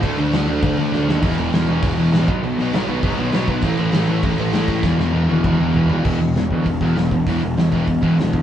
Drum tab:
CC |xxxxxx--|xxxxxxxx|xxxxxxxx|xxxxxxxx|
HH |--------|--------|--------|--------|
SD |--o---oo|--o---o-|--o---o-|--o---o-|
T1 |--------|--------|--------|--------|
T2 |--------|--------|--------|--------|
FT |--------|--------|--------|--------|
BD |o---o---|o---o--o|----o--o|o---o--o|

CC |--------|x-------|--------|
HH |--------|--o-o-o-|o-o-o-o-|
SD |oo------|--o---o-|--o---o-|
T1 |---o----|--------|--------|
T2 |----o---|--------|--------|
FT |------oo|--------|--------|
BD |o---o---|o--ooo-o|o--ooo-o|